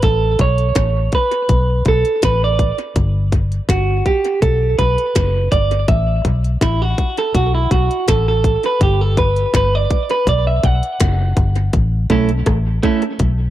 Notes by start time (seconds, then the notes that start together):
0.02 A1 A4, kick, closed hi-hat
0.39 B1 C#5, kick, closed hi-hat
0.58 closed hi-hat
0.75 A1, kick, snare, closed hi-hat
1.12 B4, kick, closed hi-hat
1.32 closed hi-hat
1.49 B1, kick, closed hi-hat
1.85 B1 A4, kick, closed hi-hat
2.05 closed hi-hat
2.22 A1 B4, kick, snare, closed hi-hat
2.44 D5
2.59 kick, closed hi-hat
2.78 closed hi-hat
2.96 G1, kick, closed hi-hat
3.32 kick, closed hi-hat
3.52 closed hi-hat
3.69 G1 F#4, kick, snare, closed hi-hat
4.06 G4, kick, closed hi-hat
4.25 closed hi-hat
4.42 B1 A4, kick, closed hi-hat
4.79 B1 B4, kick, closed hi-hat
4.98 closed hi-hat
5.15 F#1, kick, snare, closed hi-hat
5.52 G1 D5, kick, closed hi-hat
5.71 closed hi-hat
5.88 A1 E5, kick, closed hi-hat
6.25 B1, kick, closed hi-hat
6.44 closed hi-hat
6.61 A1 E4, kick, snare, closed hi-hat
6.82 F#4
6.98 kick, closed hi-hat
7.17 A4, closed hi-hat
7.35 B1 F#4, kick, closed hi-hat
7.55 E4
7.71 B1 F#4, kick, closed hi-hat
7.91 closed hi-hat
8.08 A1 A4, kick, snare, closed hi-hat
8.28 A4
8.44 kick, closed hi-hat
8.63 B4, closed hi-hat
8.81 G1 G4, kick, closed hi-hat
9.01 A4
9.17 B4, kick, closed hi-hat
9.36 closed hi-hat
9.54 G1 B4, kick, snare, closed hi-hat
9.75 D5
9.90 kick, closed hi-hat
10.10 B4, closed hi-hat
10.27 B1 D5, kick, closed hi-hat
10.47 E5
10.63 B1 F#5, kick, closed hi-hat
10.83 closed hi-hat
11.00 F#1, kick, snare, closed hi-hat
11.37 G1, kick, closed hi-hat
11.56 closed hi-hat
11.73 A1, kick, closed hi-hat
12.10 B1 A3 C#4 E4 A4, kick, closed hi-hat
12.29 closed hi-hat
12.46 A1, kick, cross-stick, closed hi-hat
12.83 A3 C#4 E4 A4, kick, closed hi-hat
13.02 closed hi-hat
13.19 B1, kick, closed hi-hat